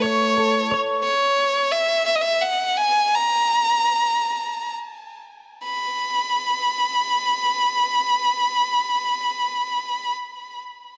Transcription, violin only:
0.01 0.77 C#5 medium
1.03 1.73 C#5 medium
1.71 2.06 E5 medium
2.06 2.17 E5 medium
2.15 2.23 D#5 medium
2.21 2.43 E5 medium
2.41 2.79 F#5 medium
2.77 3.16 G#5 medium
3.14 4.74 A#5 medium
5.65 10.14 B5 medium

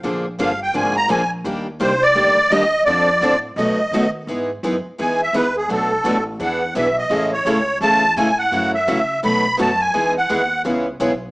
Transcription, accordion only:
0.40 0.60 F5 medium
0.63 0.74 G5 medium
0.76 0.96 G#5 medium
0.97 1.09 A#5 loud
1.11 1.31 G#5 medium
1.81 2.03 C5 medium
2.02 2.53 D5 loud
2.50 2.84 D#5 loud
2.85 3.39 D5 medium
3.57 4.10 D#5 medium
5.01 5.21 G#5 medium
5.23 5.35 E5 medium
5.35 5.56 B4 medium
5.57 5.70 G#4 medium
5.72 6.24 A4 medium
6.42 6.74 F#5 medium
6.77 6.97 E5 medium
6.98 7.30 D#5 medium
7.33 7.78 C#5 medium
7.82 8.15 A5 loud
8.17 8.38 G#5 medium
8.38 8.71 F#5 medium
8.75 9.20 E5 medium
9.24 9.57 B5 medium
9.61 9.81 A5 medium
9.81 10.13 G#5 medium
10.18 10.62 F#5 medium

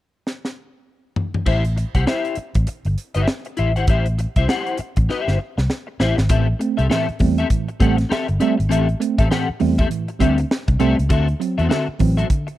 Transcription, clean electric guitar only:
1.46 1.63 E4 medium
1.46 1.63 G4 medium
1.46 1.63 C5 medium
1.46 1.63 E5 medium
1.76 muted clean electric guitar stroke soft
1.95 2.04 E4 soft
1.95 2.04 G4 medium
1.95 2.04 C5 medium
1.95 2.03 F#5 medium
2.06 2.35 E4 medium
2.06 2.35 G4 medium
2.06 2.35 C5 medium
2.06 2.36 E5 medium
2.38 muted clean electric guitar stroke soft
2.55 muted clean electric guitar stroke soft
2.67 muted clean electric guitar stroke soft
2.86 muted clean electric guitar stroke soft
3.15 3.26 E4 medium
3.15 3.27 G4 medium
3.15 3.28 C5 medium
3.15 3.28 E5 medium
3.28 muted clean electric guitar stroke soft
3.46 muted clean electric guitar stroke soft
3.57 3.70 E4 medium
3.57 3.71 G4 medium
3.57 3.71 C5 medium
3.57 3.71 E5 medium
3.76 3.86 E4 soft
3.76 3.85 G4 medium
3.76 3.85 C5 medium
3.76 3.85 F#5 medium
3.88 4.05 E4 medium
3.88 4.05 G4 medium
3.88 4.05 C5 medium
3.88 4.06 E5 medium
4.18 muted clean electric guitar stroke soft
4.37 4.46 E4 soft
4.37 4.46 G4 medium
4.37 4.46 C5 medium
4.37 4.45 E5 medium
4.48 4.77 E4 medium
4.48 4.77 G4 medium
4.48 4.78 C5 medium
4.48 4.78 F#5 medium
4.79 muted clean electric guitar stroke soft
4.97 muted clean electric guitar stroke medium
5.09 5.21 D#4 medium
5.09 5.22 F#4 medium
5.09 5.22 B4 medium
5.09 5.22 D#5 medium
5.21 5.37 E4 medium
5.21 5.38 G4 medium
5.21 5.38 C5 medium
5.21 5.38 E5 medium
5.39 muted clean electric guitar stroke soft
5.58 muted clean electric guitar stroke medium
5.87 muted clean electric guitar stroke soft
6.00 6.16 E4 medium
6.00 6.16 G4 medium
6.00 6.17 C5 medium
6.00 6.16 E5 medium
6.17 muted clean electric guitar stroke soft
6.30 6.46 C4 medium
6.30 6.46 G4 medium
6.30 6.46 A4 medium
6.30 6.47 E5 medium
6.59 muted clean electric guitar stroke soft
6.77 6.87 C4 soft
6.77 6.87 G4 medium
6.77 6.86 A4 medium
6.77 6.86 E5 medium
6.90 7.06 C4 medium
6.90 7.06 G4 medium
6.90 7.07 A4 medium
6.90 7.07 E5 loud
7.20 muted clean electric guitar stroke soft
7.38 7.48 C4 soft
7.38 7.47 G4 medium
7.38 7.47 A4 medium
7.38 7.47 E5 medium
7.68 muted clean electric guitar stroke soft
7.80 7.96 C4 medium
7.80 7.97 G4 medium
7.80 7.97 A4 medium
7.80 7.97 F#5 medium
7.97 muted clean electric guitar stroke medium
8.09 8.26 C4 medium
8.09 8.27 G4 medium
8.09 8.27 A4 medium
8.09 8.27 E5 medium
8.28 muted clean electric guitar stroke soft
8.40 8.53 C4 medium
8.40 8.53 G4 medium
8.40 8.54 A4 medium
8.40 8.54 E5 medium
8.59 muted clean electric guitar stroke soft
8.69 8.86 C4 loud
8.69 8.87 G4 medium
8.69 8.87 A4 medium
8.69 8.87 E5 medium
9.00 muted clean electric guitar stroke soft
9.18 9.28 C4 medium
9.18 9.28 G4 medium
9.18 9.27 A4 medium
9.18 9.27 E5 medium
9.31 9.47 C4 medium
9.31 9.47 G4 medium
9.31 9.47 A4 medium
9.31 9.47 F#5 medium
9.60 muted clean electric guitar stroke soft
9.78 9.88 C4 medium
9.78 9.88 G4 medium
9.78 9.87 A4 medium
9.78 9.87 E5 medium
10.08 muted clean electric guitar stroke soft
10.20 10.36 C4 medium
10.20 10.37 G4 medium
10.20 10.37 A4 medium
10.20 10.37 E5 medium
10.40 muted clean electric guitar stroke medium
10.68 muted clean electric guitar stroke soft
10.80 10.96 C4 medium
10.80 10.96 G4 medium
10.80 10.97 A4 medium
10.80 10.96 E5 medium
10.97 muted clean electric guitar stroke soft
11.09 11.26 C4 medium
11.09 11.26 F#4 medium
11.09 11.27 A4 medium
11.09 11.27 E5 medium
11.40 muted clean electric guitar stroke soft
11.58 11.67 C4 medium
11.58 11.67 F#4 medium
11.58 11.67 A4 medium
11.58 11.66 E5 medium
11.69 11.86 C4 medium
11.69 11.86 F#4 medium
11.69 11.86 A4 medium
11.69 11.86 E5 medium
12.00 muted clean electric guitar stroke soft
12.17 12.27 C4 soft
12.17 12.27 F#4 medium
12.17 12.26 A4 medium
12.17 12.26 E5 medium
12.47 muted clean electric guitar stroke soft

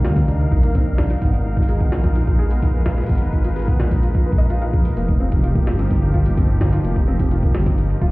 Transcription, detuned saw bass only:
0.05 0.44 D2 medium
0.51 1.15 A#1 medium
1.22 1.85 G#1 loud
1.92 3.02 A#1 medium
3.09 3.72 G#1 loud
3.80 4.90 A#1 medium
4.97 5.60 F1 loud
5.67 6.77 G1 medium
6.84 7.47 F1 loud
7.55 7.94 G1 medium
8.02 8.11 D#1 medium

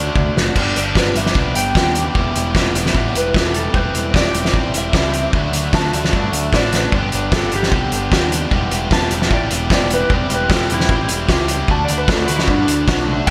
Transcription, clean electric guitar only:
0.00 0.32 D5 medium
0.77 0.96 D5 medium
0.99 1.16 B4 medium
1.17 1.55 E5 medium
1.56 2.71 G5 medium
3.17 3.38 B4 medium
3.38 3.55 A4 medium
3.56 3.75 A4 medium
3.75 4.13 B4 medium
4.16 4.73 D5 medium
4.78 5.53 E5 medium
5.75 5.93 A5 loud
5.97 6.17 E5 medium
6.17 6.33 D5 medium
6.34 6.53 E5 medium
6.55 6.76 D5 medium
6.76 6.94 B4 medium
6.94 7.15 D5 medium
7.15 7.33 B4 medium
7.35 7.53 A4 medium
7.55 7.73 G4 loud
8.93 9.12 A5 loud
9.14 9.32 E5 medium
9.34 9.52 D5 medium
9.52 9.71 E5 medium
9.73 9.91 D5 medium
9.94 10.14 B4 medium
10.14 10.31 D5 loud
10.34 10.54 B4 medium
10.54 10.72 A4 medium
10.74 10.91 E4 loud
11.71 11.83 A5 loud
11.85 11.96 D5 medium
11.98 12.10 B4 medium
12.11 12.25 A4 medium
12.25 12.36 B4 medium
12.36 12.48 E4 loud
12.50 13.26 D4 medium
13.27 13.30 G5 loud

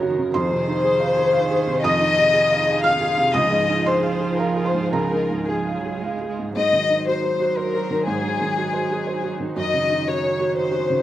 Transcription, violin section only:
0.35 1.79 C5 loud
1.84 2.84 D#5 loud
2.84 3.34 F5 loud
3.35 3.86 D#5 loud
3.86 4.39 C5 medium
4.38 4.65 A#4 medium
4.65 4.93 C5 medium
4.93 5.47 A#4 medium
5.47 6.29 G#4 medium
6.56 7.03 D#5 loud
7.07 7.56 C5 medium
7.57 8.08 A#4 medium
8.07 9.30 G#4 medium
9.58 10.04 D#5 medium
10.08 10.57 C#5 medium
10.57 11.02 C5 medium

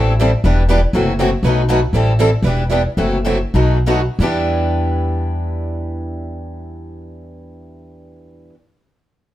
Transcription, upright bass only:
0.00 0.34 A1 medium
0.44 0.84 E1 medium
0.93 1.33 F#1 medium
1.43 1.83 B1 medium
1.93 2.33 A1 medium
2.42 2.85 E1 medium
2.97 3.43 F#1 medium
3.54 4.07 B1 medium
4.19 8.49 E2 medium

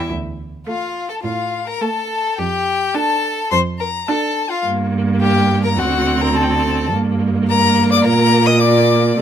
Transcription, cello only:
0.10 0.55 D2 medium
1.24 1.69 A2 medium
2.38 2.83 F2 medium
3.51 3.97 F2 medium
4.65 5.80 G2 medium
5.78 6.93 D2 medium
6.92 8.04 G2 medium
8.05 9.15 A#2 loud
9.18 9.22 C3 medium

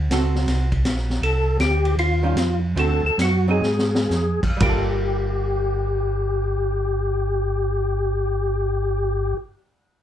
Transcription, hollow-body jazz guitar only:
0.12 0.68 C4 medium
0.12 0.68 F#4 medium
0.12 0.68 A4 medium
2.23 2.35 D#3 medium
2.23 2.35 G3 medium
2.23 2.35 C#4 medium
2.23 2.36 F4 medium
2.76 3.01 D3 soft
2.76 3.01 A3 medium
2.76 3.01 C4 medium
2.76 3.01 F#4 medium
3.48 3.61 F#3 medium
3.48 3.62 C4 medium
3.48 3.62 D#4 medium
4.57 9.35 G3 medium
4.61 9.40 A#3 medium
4.61 9.44 F4 medium
4.69 9.47 A4 medium

